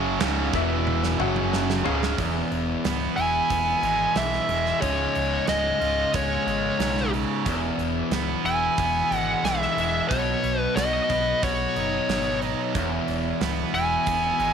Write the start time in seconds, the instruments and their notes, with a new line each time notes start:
Already playing: fingered electric bass F#1, overdriven electric guitar F#2 C#3 F#3, honky-tonk piano G#4 C#5 F5
0.20 fingered electric bass C#1, overdriven electric guitar C#2 G#2 C#3, snare, crash
0.53 fingered electric bass E1, overdriven electric guitar E2 B2 E3, honky-tonk piano E4 B4 E5, kick
0.87 high tom
1.03 snare
1.19 fingered electric bass F#1, overdriven electric guitar F#2 C#3 F#3, honky-tonk piano F#4 C#5 F#5, mid tom
1.36 mid tom
1.53 snare
1.70 snare
1.84 fingered electric bass C#1, overdriven electric guitar C#2 G#2 C#3, honky-tonk piano G#4 C#5 F5, floor tom
2.03 snare
2.18 fingered electric bass E1, overdriven electric guitar E2, distorted electric guitar B2 E3, kick, open hi-hat
2.51 fingered electric bass E1, open hi-hat
2.84 fingered electric bass C#1, overdriven electric guitar B3, snare, open hi-hat
3.16 fingered electric bass E1, overdriven electric guitar E4, lead electric guitar G#5, open hi-hat
3.50 fingered electric bass E1, overdriven electric guitar B3, kick, open hi-hat
3.82 fingered electric bass G#1, overdriven electric guitar G#3, open hi-hat
4.15 fingered electric bass B1, overdriven electric guitar E3, lead electric guitar E5, snare, open hi-hat
4.33 snare
4.48 fingered electric bass E1, overdriven electric guitar G#3, open hi-hat
4.66 snare
4.81 fingered electric bass C#1, overdriven electric guitar C#2, distorted electric guitar G#2 C#3, lead electric guitar C#5, kick, open hi-hat
5.15 fingered electric bass C#1, open hi-hat
5.47 fingered electric bass C#1, overdriven electric guitar G#3, lead electric guitar D#5, snare, open hi-hat
5.80 fingered electric bass C#1, overdriven electric guitar F4, open hi-hat
6.13 fingered electric bass C#1, overdriven electric guitar G#3, lead electric guitar C#5, kick, open hi-hat
6.46 fingered electric bass G#1, overdriven electric guitar C#3, open hi-hat
6.78 fingered electric bass B1, overdriven electric guitar G#2, snare, open hi-hat
6.97 snare
7.14 overdriven electric guitar C#3, open hi-hat
7.46 fingered electric bass E1, overdriven electric guitar E2, distorted electric guitar B2 E3, kick, open hi-hat
7.78 fingered electric bass E1, open hi-hat
8.11 fingered electric bass C#1, overdriven electric guitar B3, snare, open hi-hat
8.44 fingered electric bass E1, overdriven electric guitar E4, lead electric guitar G#5, open hi-hat
8.78 fingered electric bass E1, overdriven electric guitar B3, kick, open hi-hat
9.10 fingered electric bass G#1, overdriven electric guitar G#3, open hi-hat
9.18 lead electric guitar F#5
9.43 fingered electric bass B1, overdriven electric guitar E3, lead electric guitar E5, snare, open hi-hat
9.62 snare
9.76 fingered electric bass E1, overdriven electric guitar G#3, open hi-hat
10.08 fingered electric bass B1, overdriven electric guitar B2, distorted electric guitar F#3 B3, lead electric guitar C#5, kick, open hi-hat
10.43 fingered electric bass B1, open hi-hat
10.60 lead electric guitar B4
10.76 fingered electric bass B1, overdriven electric guitar F#4, lead electric guitar D#5, snare, open hi-hat
11.09 fingered electric bass B1, overdriven electric guitar B4, kick, open hi-hat
11.42 fingered electric bass B1, overdriven electric guitar F#4, lead electric guitar C#5, kick, open hi-hat
11.75 fingered electric bass F#1, overdriven electric guitar D#4, open hi-hat
12.08 fingered electric bass G#1, overdriven electric guitar B3, snare, open hi-hat
12.41 overdriven electric guitar D#4, open hi-hat
12.75 fingered electric bass E1, overdriven electric guitar E2, distorted electric guitar B2 E3, kick, open hi-hat
13.08 fingered electric bass E1, open hi-hat
13.40 fingered electric bass C#1, overdriven electric guitar B3, snare, open hi-hat
13.73 fingered electric bass E1, overdriven electric guitar E4, lead electric guitar G#5, open hi-hat
14.07 fingered electric bass E1, overdriven electric guitar B3, kick, open hi-hat
14.39 fingered electric bass G#1, overdriven electric guitar G#3, open hi-hat